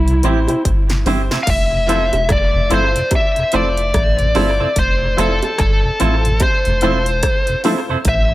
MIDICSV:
0, 0, Header, 1, 7, 480
1, 0, Start_track
1, 0, Key_signature, -1, "major"
1, 0, Tempo, 823045
1, 858, Time_signature, 4, 2, 24, 8
1, 4865, End_track
2, 0, Start_track
2, 0, Title_t, "Lead electric guitar"
2, 0, Program_c, 0, 29
2, 0, Note_on_c, 0, 64, 64
2, 361, Note_off_c, 0, 64, 0
2, 835, Note_on_c, 0, 77, 75
2, 863, Note_off_c, 0, 77, 0
2, 875, Note_on_c, 0, 76, 103
2, 1353, Note_off_c, 0, 76, 0
2, 1355, Note_on_c, 0, 74, 104
2, 1570, Note_off_c, 0, 74, 0
2, 1599, Note_on_c, 0, 72, 73
2, 1812, Note_off_c, 0, 72, 0
2, 1841, Note_on_c, 0, 76, 110
2, 2072, Note_off_c, 0, 76, 0
2, 2075, Note_on_c, 0, 74, 104
2, 2794, Note_on_c, 0, 72, 98
2, 2808, Note_off_c, 0, 74, 0
2, 3032, Note_off_c, 0, 72, 0
2, 3035, Note_on_c, 0, 69, 93
2, 3261, Note_off_c, 0, 69, 0
2, 3268, Note_on_c, 0, 69, 85
2, 3745, Note_off_c, 0, 69, 0
2, 3747, Note_on_c, 0, 72, 90
2, 4439, Note_off_c, 0, 72, 0
2, 4717, Note_on_c, 0, 76, 107
2, 4865, Note_off_c, 0, 76, 0
2, 4865, End_track
3, 0, Start_track
3, 0, Title_t, "Upright piano"
3, 0, Program_c, 1, 0
3, 136, Note_on_c, 1, 60, 87
3, 139, Note_on_c, 1, 64, 78
3, 141, Note_on_c, 1, 67, 74
3, 143, Note_on_c, 1, 72, 100
3, 274, Note_off_c, 1, 60, 0
3, 276, Note_off_c, 1, 64, 0
3, 278, Note_off_c, 1, 67, 0
3, 279, Note_off_c, 1, 72, 0
3, 282, Note_on_c, 1, 60, 59
3, 284, Note_on_c, 1, 64, 65
3, 287, Note_on_c, 1, 67, 55
3, 288, Note_on_c, 1, 72, 73
3, 386, Note_off_c, 1, 60, 0
3, 387, Note_off_c, 1, 64, 0
3, 388, Note_off_c, 1, 67, 0
3, 389, Note_off_c, 1, 72, 0
3, 618, Note_on_c, 1, 60, 79
3, 620, Note_on_c, 1, 64, 77
3, 622, Note_on_c, 1, 67, 72
3, 624, Note_on_c, 1, 72, 93
3, 767, Note_off_c, 1, 60, 0
3, 769, Note_off_c, 1, 64, 0
3, 770, Note_off_c, 1, 67, 0
3, 771, Note_off_c, 1, 72, 0
3, 1096, Note_on_c, 1, 64, 91
3, 1097, Note_on_c, 1, 65, 78
3, 1098, Note_on_c, 1, 69, 81
3, 1103, Note_on_c, 1, 72, 99
3, 1247, Note_off_c, 1, 64, 0
3, 1247, Note_off_c, 1, 65, 0
3, 1248, Note_off_c, 1, 69, 0
3, 1250, Note_off_c, 1, 72, 0
3, 1573, Note_on_c, 1, 64, 99
3, 1577, Note_on_c, 1, 65, 77
3, 1578, Note_on_c, 1, 69, 85
3, 1580, Note_on_c, 1, 72, 102
3, 1725, Note_off_c, 1, 64, 0
3, 1727, Note_off_c, 1, 65, 0
3, 1728, Note_off_c, 1, 69, 0
3, 1729, Note_off_c, 1, 72, 0
3, 2056, Note_on_c, 1, 64, 81
3, 2058, Note_on_c, 1, 65, 80
3, 2061, Note_on_c, 1, 69, 83
3, 2062, Note_on_c, 1, 72, 98
3, 2206, Note_off_c, 1, 64, 0
3, 2207, Note_off_c, 1, 65, 0
3, 2209, Note_off_c, 1, 69, 0
3, 2209, Note_off_c, 1, 72, 0
3, 2536, Note_on_c, 1, 64, 83
3, 2538, Note_on_c, 1, 65, 75
3, 2540, Note_on_c, 1, 69, 69
3, 2541, Note_on_c, 1, 72, 94
3, 2673, Note_off_c, 1, 69, 0
3, 2673, Note_off_c, 1, 72, 0
3, 2681, Note_on_c, 1, 72, 28
3, 2682, Note_on_c, 1, 69, 27
3, 2686, Note_off_c, 1, 64, 0
3, 2687, Note_off_c, 1, 65, 0
3, 2720, Note_off_c, 1, 72, 0
3, 2721, Note_off_c, 1, 69, 0
3, 3014, Note_on_c, 1, 64, 87
3, 3017, Note_on_c, 1, 65, 79
3, 3018, Note_on_c, 1, 69, 82
3, 3022, Note_on_c, 1, 72, 105
3, 3165, Note_off_c, 1, 64, 0
3, 3167, Note_off_c, 1, 65, 0
3, 3167, Note_off_c, 1, 69, 0
3, 3169, Note_off_c, 1, 72, 0
3, 3497, Note_on_c, 1, 64, 89
3, 3498, Note_on_c, 1, 65, 86
3, 3499, Note_on_c, 1, 69, 79
3, 3502, Note_on_c, 1, 72, 92
3, 3647, Note_off_c, 1, 64, 0
3, 3647, Note_off_c, 1, 65, 0
3, 3648, Note_off_c, 1, 69, 0
3, 3650, Note_off_c, 1, 72, 0
3, 3976, Note_on_c, 1, 64, 86
3, 3978, Note_on_c, 1, 65, 91
3, 3981, Note_on_c, 1, 69, 86
3, 3983, Note_on_c, 1, 72, 108
3, 4126, Note_off_c, 1, 64, 0
3, 4127, Note_off_c, 1, 65, 0
3, 4129, Note_off_c, 1, 69, 0
3, 4130, Note_off_c, 1, 72, 0
3, 4453, Note_on_c, 1, 64, 76
3, 4455, Note_on_c, 1, 65, 77
3, 4459, Note_on_c, 1, 69, 73
3, 4460, Note_on_c, 1, 72, 95
3, 4591, Note_off_c, 1, 69, 0
3, 4592, Note_off_c, 1, 72, 0
3, 4600, Note_on_c, 1, 69, 25
3, 4601, Note_on_c, 1, 72, 27
3, 4605, Note_off_c, 1, 64, 0
3, 4606, Note_off_c, 1, 65, 0
3, 4639, Note_off_c, 1, 69, 0
3, 4640, Note_off_c, 1, 72, 0
3, 4865, End_track
4, 0, Start_track
4, 0, Title_t, "Clean electric guitar"
4, 0, Program_c, 2, 27
4, 144, Note_on_c, 2, 60, 78
4, 146, Note_on_c, 2, 64, 89
4, 148, Note_on_c, 2, 67, 95
4, 150, Note_on_c, 2, 72, 92
4, 225, Note_off_c, 2, 60, 0
4, 226, Note_off_c, 2, 64, 0
4, 227, Note_off_c, 2, 67, 0
4, 228, Note_off_c, 2, 72, 0
4, 626, Note_on_c, 2, 60, 86
4, 626, Note_on_c, 2, 64, 84
4, 629, Note_on_c, 2, 67, 104
4, 632, Note_on_c, 2, 72, 93
4, 705, Note_off_c, 2, 60, 0
4, 705, Note_off_c, 2, 64, 0
4, 707, Note_off_c, 2, 67, 0
4, 708, Note_off_c, 2, 72, 0
4, 768, Note_on_c, 2, 72, 59
4, 770, Note_on_c, 2, 67, 61
4, 772, Note_on_c, 2, 64, 61
4, 774, Note_on_c, 2, 60, 49
4, 809, Note_off_c, 2, 72, 0
4, 810, Note_off_c, 2, 67, 0
4, 811, Note_off_c, 2, 64, 0
4, 812, Note_off_c, 2, 60, 0
4, 1102, Note_on_c, 2, 60, 75
4, 1105, Note_on_c, 2, 64, 78
4, 1107, Note_on_c, 2, 69, 81
4, 1109, Note_on_c, 2, 72, 72
4, 1184, Note_off_c, 2, 60, 0
4, 1185, Note_off_c, 2, 64, 0
4, 1186, Note_off_c, 2, 69, 0
4, 1187, Note_off_c, 2, 72, 0
4, 1581, Note_on_c, 2, 60, 70
4, 1584, Note_on_c, 2, 64, 87
4, 1585, Note_on_c, 2, 69, 84
4, 1585, Note_on_c, 2, 72, 87
4, 1663, Note_off_c, 2, 60, 0
4, 1664, Note_off_c, 2, 64, 0
4, 1665, Note_off_c, 2, 69, 0
4, 1665, Note_off_c, 2, 72, 0
4, 2062, Note_on_c, 2, 60, 81
4, 2063, Note_on_c, 2, 64, 83
4, 2066, Note_on_c, 2, 69, 94
4, 2067, Note_on_c, 2, 72, 92
4, 2143, Note_off_c, 2, 60, 0
4, 2144, Note_off_c, 2, 64, 0
4, 2145, Note_off_c, 2, 69, 0
4, 2146, Note_off_c, 2, 72, 0
4, 2537, Note_on_c, 2, 60, 82
4, 2540, Note_on_c, 2, 64, 90
4, 2540, Note_on_c, 2, 69, 92
4, 2543, Note_on_c, 2, 72, 97
4, 2621, Note_off_c, 2, 60, 0
4, 2622, Note_off_c, 2, 64, 0
4, 2622, Note_off_c, 2, 69, 0
4, 2624, Note_off_c, 2, 72, 0
4, 2683, Note_on_c, 2, 72, 61
4, 2685, Note_on_c, 2, 69, 59
4, 2687, Note_on_c, 2, 60, 43
4, 2687, Note_on_c, 2, 64, 57
4, 2726, Note_off_c, 2, 72, 0
4, 2727, Note_off_c, 2, 69, 0
4, 2728, Note_off_c, 2, 60, 0
4, 2728, Note_off_c, 2, 64, 0
4, 3019, Note_on_c, 2, 60, 69
4, 3023, Note_on_c, 2, 64, 79
4, 3024, Note_on_c, 2, 69, 82
4, 3026, Note_on_c, 2, 72, 90
4, 3102, Note_off_c, 2, 60, 0
4, 3104, Note_off_c, 2, 64, 0
4, 3104, Note_off_c, 2, 69, 0
4, 3105, Note_off_c, 2, 72, 0
4, 3501, Note_on_c, 2, 60, 73
4, 3505, Note_on_c, 2, 64, 82
4, 3508, Note_on_c, 2, 69, 81
4, 3508, Note_on_c, 2, 72, 88
4, 3583, Note_off_c, 2, 60, 0
4, 3584, Note_off_c, 2, 64, 0
4, 3586, Note_off_c, 2, 69, 0
4, 3586, Note_off_c, 2, 72, 0
4, 3984, Note_on_c, 2, 60, 95
4, 3989, Note_on_c, 2, 64, 95
4, 3989, Note_on_c, 2, 69, 90
4, 3990, Note_on_c, 2, 72, 94
4, 4064, Note_off_c, 2, 60, 0
4, 4066, Note_off_c, 2, 64, 0
4, 4067, Note_off_c, 2, 69, 0
4, 4067, Note_off_c, 2, 72, 0
4, 4462, Note_on_c, 2, 60, 93
4, 4464, Note_on_c, 2, 64, 98
4, 4467, Note_on_c, 2, 69, 100
4, 4467, Note_on_c, 2, 72, 109
4, 4543, Note_off_c, 2, 60, 0
4, 4544, Note_off_c, 2, 64, 0
4, 4545, Note_off_c, 2, 69, 0
4, 4546, Note_off_c, 2, 72, 0
4, 4608, Note_on_c, 2, 72, 70
4, 4611, Note_on_c, 2, 69, 67
4, 4612, Note_on_c, 2, 64, 63
4, 4613, Note_on_c, 2, 60, 59
4, 4648, Note_off_c, 2, 72, 0
4, 4650, Note_off_c, 2, 64, 0
4, 4650, Note_off_c, 2, 69, 0
4, 4651, Note_off_c, 2, 60, 0
4, 4865, End_track
5, 0, Start_track
5, 0, Title_t, "Tonewheel organ"
5, 0, Program_c, 3, 16
5, 47, Note_on_c, 3, 48, 54
5, 87, Note_off_c, 3, 48, 0
5, 139, Note_on_c, 3, 52, 75
5, 142, Note_on_c, 3, 55, 69
5, 144, Note_on_c, 3, 60, 73
5, 202, Note_off_c, 3, 52, 0
5, 203, Note_off_c, 3, 55, 0
5, 204, Note_off_c, 3, 60, 0
5, 285, Note_on_c, 3, 48, 60
5, 326, Note_off_c, 3, 48, 0
5, 528, Note_on_c, 3, 48, 54
5, 567, Note_off_c, 3, 48, 0
5, 621, Note_on_c, 3, 52, 67
5, 622, Note_on_c, 3, 55, 64
5, 625, Note_on_c, 3, 60, 76
5, 682, Note_off_c, 3, 52, 0
5, 683, Note_off_c, 3, 55, 0
5, 685, Note_off_c, 3, 60, 0
5, 764, Note_on_c, 3, 48, 56
5, 805, Note_off_c, 3, 48, 0
5, 1005, Note_on_c, 3, 41, 58
5, 1006, Note_on_c, 3, 48, 53
5, 1046, Note_off_c, 3, 41, 0
5, 1046, Note_off_c, 3, 48, 0
5, 1098, Note_on_c, 3, 53, 74
5, 1099, Note_on_c, 3, 57, 68
5, 1100, Note_on_c, 3, 64, 74
5, 1161, Note_off_c, 3, 53, 0
5, 1162, Note_off_c, 3, 57, 0
5, 1162, Note_off_c, 3, 64, 0
5, 1481, Note_on_c, 3, 41, 57
5, 1482, Note_on_c, 3, 48, 46
5, 1523, Note_off_c, 3, 41, 0
5, 1524, Note_off_c, 3, 48, 0
5, 1580, Note_on_c, 3, 53, 80
5, 1581, Note_on_c, 3, 57, 71
5, 1583, Note_on_c, 3, 64, 84
5, 1642, Note_off_c, 3, 53, 0
5, 1643, Note_off_c, 3, 57, 0
5, 1643, Note_off_c, 3, 64, 0
5, 1725, Note_on_c, 3, 48, 55
5, 1726, Note_on_c, 3, 41, 58
5, 1766, Note_off_c, 3, 41, 0
5, 1766, Note_off_c, 3, 48, 0
5, 1965, Note_on_c, 3, 48, 56
5, 1966, Note_on_c, 3, 41, 58
5, 2005, Note_off_c, 3, 48, 0
5, 2006, Note_off_c, 3, 41, 0
5, 2061, Note_on_c, 3, 53, 68
5, 2063, Note_on_c, 3, 57, 68
5, 2065, Note_on_c, 3, 64, 78
5, 2123, Note_off_c, 3, 53, 0
5, 2123, Note_off_c, 3, 57, 0
5, 2124, Note_off_c, 3, 64, 0
5, 2446, Note_on_c, 3, 41, 57
5, 2447, Note_on_c, 3, 48, 51
5, 2486, Note_off_c, 3, 41, 0
5, 2487, Note_off_c, 3, 48, 0
5, 2538, Note_on_c, 3, 53, 75
5, 2539, Note_on_c, 3, 57, 61
5, 2541, Note_on_c, 3, 64, 85
5, 2601, Note_off_c, 3, 53, 0
5, 2602, Note_off_c, 3, 57, 0
5, 2603, Note_off_c, 3, 64, 0
5, 2685, Note_on_c, 3, 48, 54
5, 2688, Note_on_c, 3, 41, 60
5, 2726, Note_off_c, 3, 48, 0
5, 2727, Note_off_c, 3, 41, 0
5, 2927, Note_on_c, 3, 41, 52
5, 2928, Note_on_c, 3, 48, 52
5, 2967, Note_off_c, 3, 41, 0
5, 2967, Note_off_c, 3, 48, 0
5, 3018, Note_on_c, 3, 53, 75
5, 3020, Note_on_c, 3, 57, 67
5, 3022, Note_on_c, 3, 64, 78
5, 3081, Note_off_c, 3, 53, 0
5, 3082, Note_off_c, 3, 57, 0
5, 3083, Note_off_c, 3, 64, 0
5, 3405, Note_on_c, 3, 48, 49
5, 3406, Note_on_c, 3, 41, 59
5, 3445, Note_off_c, 3, 48, 0
5, 3446, Note_off_c, 3, 41, 0
5, 3501, Note_on_c, 3, 53, 74
5, 3504, Note_on_c, 3, 57, 65
5, 3505, Note_on_c, 3, 64, 84
5, 3562, Note_off_c, 3, 53, 0
5, 3564, Note_off_c, 3, 57, 0
5, 3565, Note_off_c, 3, 64, 0
5, 3651, Note_on_c, 3, 41, 63
5, 3651, Note_on_c, 3, 48, 55
5, 3688, Note_off_c, 3, 48, 0
5, 3689, Note_off_c, 3, 41, 0
5, 3888, Note_on_c, 3, 41, 60
5, 3889, Note_on_c, 3, 48, 61
5, 3927, Note_off_c, 3, 41, 0
5, 3928, Note_off_c, 3, 48, 0
5, 3980, Note_on_c, 3, 53, 80
5, 3982, Note_on_c, 3, 57, 68
5, 3985, Note_on_c, 3, 64, 79
5, 4042, Note_off_c, 3, 53, 0
5, 4043, Note_off_c, 3, 57, 0
5, 4044, Note_off_c, 3, 64, 0
5, 4369, Note_on_c, 3, 41, 58
5, 4371, Note_on_c, 3, 48, 53
5, 4407, Note_off_c, 3, 41, 0
5, 4408, Note_off_c, 3, 48, 0
5, 4459, Note_on_c, 3, 53, 73
5, 4461, Note_on_c, 3, 57, 68
5, 4462, Note_on_c, 3, 64, 89
5, 4521, Note_off_c, 3, 53, 0
5, 4522, Note_off_c, 3, 57, 0
5, 4523, Note_off_c, 3, 64, 0
5, 4605, Note_on_c, 3, 41, 62
5, 4605, Note_on_c, 3, 48, 62
5, 4645, Note_off_c, 3, 41, 0
5, 4645, Note_off_c, 3, 48, 0
5, 4845, Note_on_c, 3, 52, 51
5, 4846, Note_on_c, 3, 45, 59
5, 4865, Note_off_c, 3, 45, 0
5, 4865, Note_off_c, 3, 52, 0
5, 4865, End_track
6, 0, Start_track
6, 0, Title_t, "Sub bass"
6, 0, Program_c, 4, 38
6, 0, Note_on_c, 4, 36, 100
6, 128, Note_off_c, 4, 36, 0
6, 139, Note_on_c, 4, 33, 93
6, 277, Note_off_c, 4, 33, 0
6, 383, Note_on_c, 4, 31, 96
6, 611, Note_off_c, 4, 31, 0
6, 615, Note_on_c, 4, 31, 87
6, 755, Note_off_c, 4, 31, 0
6, 860, Note_on_c, 4, 29, 100
6, 1228, Note_off_c, 4, 29, 0
6, 1244, Note_on_c, 4, 28, 89
6, 1335, Note_off_c, 4, 28, 0
6, 1345, Note_on_c, 4, 29, 96
6, 1480, Note_off_c, 4, 29, 0
6, 1484, Note_on_c, 4, 29, 89
6, 1576, Note_off_c, 4, 29, 0
6, 1583, Note_on_c, 4, 31, 94
6, 1719, Note_off_c, 4, 31, 0
6, 2065, Note_on_c, 4, 29, 87
6, 2292, Note_off_c, 4, 29, 0
6, 2300, Note_on_c, 4, 33, 85
6, 2530, Note_off_c, 4, 33, 0
6, 2544, Note_on_c, 4, 31, 89
6, 2679, Note_off_c, 4, 31, 0
6, 2779, Note_on_c, 4, 29, 114
6, 3009, Note_off_c, 4, 29, 0
6, 3021, Note_on_c, 4, 29, 99
6, 3158, Note_off_c, 4, 29, 0
6, 3265, Note_on_c, 4, 31, 90
6, 3400, Note_off_c, 4, 31, 0
6, 3506, Note_on_c, 4, 33, 91
6, 3733, Note_off_c, 4, 33, 0
6, 3889, Note_on_c, 4, 29, 94
6, 3978, Note_off_c, 4, 29, 0
6, 3981, Note_on_c, 4, 28, 106
6, 4210, Note_off_c, 4, 28, 0
6, 4697, Note_on_c, 4, 33, 117
6, 4865, Note_off_c, 4, 33, 0
6, 4865, End_track
7, 0, Start_track
7, 0, Title_t, "Drums"
7, 44, Note_on_c, 9, 42, 55
7, 103, Note_off_c, 9, 42, 0
7, 135, Note_on_c, 9, 42, 72
7, 193, Note_off_c, 9, 42, 0
7, 277, Note_on_c, 9, 60, 66
7, 283, Note_on_c, 9, 42, 58
7, 336, Note_off_c, 9, 60, 0
7, 341, Note_off_c, 9, 42, 0
7, 380, Note_on_c, 9, 36, 111
7, 380, Note_on_c, 9, 42, 99
7, 439, Note_off_c, 9, 36, 0
7, 439, Note_off_c, 9, 42, 0
7, 522, Note_on_c, 9, 42, 51
7, 524, Note_on_c, 9, 38, 59
7, 581, Note_off_c, 9, 42, 0
7, 583, Note_off_c, 9, 38, 0
7, 618, Note_on_c, 9, 46, 73
7, 620, Note_on_c, 9, 60, 68
7, 620, Note_on_c, 9, 61, 72
7, 677, Note_off_c, 9, 46, 0
7, 679, Note_off_c, 9, 60, 0
7, 679, Note_off_c, 9, 61, 0
7, 765, Note_on_c, 9, 38, 80
7, 823, Note_off_c, 9, 38, 0
7, 858, Note_on_c, 9, 36, 101
7, 858, Note_on_c, 9, 42, 98
7, 858, Note_on_c, 9, 49, 93
7, 916, Note_off_c, 9, 36, 0
7, 916, Note_off_c, 9, 42, 0
7, 917, Note_off_c, 9, 49, 0
7, 1097, Note_on_c, 9, 60, 48
7, 1103, Note_on_c, 9, 42, 77
7, 1155, Note_off_c, 9, 60, 0
7, 1162, Note_off_c, 9, 42, 0
7, 1241, Note_on_c, 9, 42, 47
7, 1242, Note_on_c, 9, 60, 67
7, 1300, Note_off_c, 9, 42, 0
7, 1300, Note_off_c, 9, 60, 0
7, 1334, Note_on_c, 9, 37, 103
7, 1336, Note_on_c, 9, 42, 91
7, 1342, Note_on_c, 9, 36, 112
7, 1393, Note_off_c, 9, 37, 0
7, 1394, Note_off_c, 9, 42, 0
7, 1401, Note_off_c, 9, 36, 0
7, 1578, Note_on_c, 9, 42, 72
7, 1636, Note_off_c, 9, 42, 0
7, 1725, Note_on_c, 9, 42, 62
7, 1783, Note_off_c, 9, 42, 0
7, 1813, Note_on_c, 9, 42, 86
7, 1816, Note_on_c, 9, 36, 118
7, 1819, Note_on_c, 9, 60, 65
7, 1871, Note_off_c, 9, 42, 0
7, 1874, Note_off_c, 9, 36, 0
7, 1878, Note_off_c, 9, 60, 0
7, 1961, Note_on_c, 9, 42, 53
7, 2019, Note_off_c, 9, 42, 0
7, 2051, Note_on_c, 9, 42, 72
7, 2110, Note_off_c, 9, 42, 0
7, 2201, Note_on_c, 9, 42, 60
7, 2260, Note_off_c, 9, 42, 0
7, 2298, Note_on_c, 9, 42, 90
7, 2299, Note_on_c, 9, 36, 118
7, 2300, Note_on_c, 9, 37, 121
7, 2357, Note_off_c, 9, 42, 0
7, 2358, Note_off_c, 9, 36, 0
7, 2359, Note_off_c, 9, 37, 0
7, 2441, Note_on_c, 9, 42, 53
7, 2500, Note_off_c, 9, 42, 0
7, 2537, Note_on_c, 9, 46, 69
7, 2544, Note_on_c, 9, 60, 72
7, 2544, Note_on_c, 9, 61, 67
7, 2595, Note_off_c, 9, 46, 0
7, 2602, Note_off_c, 9, 60, 0
7, 2602, Note_off_c, 9, 61, 0
7, 2776, Note_on_c, 9, 42, 98
7, 2778, Note_on_c, 9, 36, 96
7, 2835, Note_off_c, 9, 42, 0
7, 2836, Note_off_c, 9, 36, 0
7, 3021, Note_on_c, 9, 60, 49
7, 3024, Note_on_c, 9, 42, 75
7, 3079, Note_off_c, 9, 60, 0
7, 3082, Note_off_c, 9, 42, 0
7, 3164, Note_on_c, 9, 42, 45
7, 3165, Note_on_c, 9, 60, 65
7, 3222, Note_off_c, 9, 42, 0
7, 3223, Note_off_c, 9, 60, 0
7, 3257, Note_on_c, 9, 37, 111
7, 3258, Note_on_c, 9, 42, 103
7, 3263, Note_on_c, 9, 36, 114
7, 3315, Note_off_c, 9, 37, 0
7, 3316, Note_off_c, 9, 42, 0
7, 3322, Note_off_c, 9, 36, 0
7, 3498, Note_on_c, 9, 42, 75
7, 3556, Note_off_c, 9, 42, 0
7, 3645, Note_on_c, 9, 42, 59
7, 3703, Note_off_c, 9, 42, 0
7, 3731, Note_on_c, 9, 42, 94
7, 3735, Note_on_c, 9, 36, 118
7, 3739, Note_on_c, 9, 60, 68
7, 3789, Note_off_c, 9, 42, 0
7, 3793, Note_off_c, 9, 36, 0
7, 3797, Note_off_c, 9, 60, 0
7, 3879, Note_on_c, 9, 42, 50
7, 3937, Note_off_c, 9, 42, 0
7, 3972, Note_on_c, 9, 42, 66
7, 4030, Note_off_c, 9, 42, 0
7, 4119, Note_on_c, 9, 42, 60
7, 4177, Note_off_c, 9, 42, 0
7, 4215, Note_on_c, 9, 42, 94
7, 4217, Note_on_c, 9, 37, 127
7, 4218, Note_on_c, 9, 36, 113
7, 4273, Note_off_c, 9, 42, 0
7, 4275, Note_off_c, 9, 37, 0
7, 4276, Note_off_c, 9, 36, 0
7, 4357, Note_on_c, 9, 42, 58
7, 4415, Note_off_c, 9, 42, 0
7, 4455, Note_on_c, 9, 46, 76
7, 4460, Note_on_c, 9, 60, 70
7, 4460, Note_on_c, 9, 61, 70
7, 4513, Note_off_c, 9, 46, 0
7, 4519, Note_off_c, 9, 60, 0
7, 4519, Note_off_c, 9, 61, 0
7, 4693, Note_on_c, 9, 42, 101
7, 4696, Note_on_c, 9, 36, 104
7, 4752, Note_off_c, 9, 42, 0
7, 4754, Note_off_c, 9, 36, 0
7, 4865, End_track
0, 0, End_of_file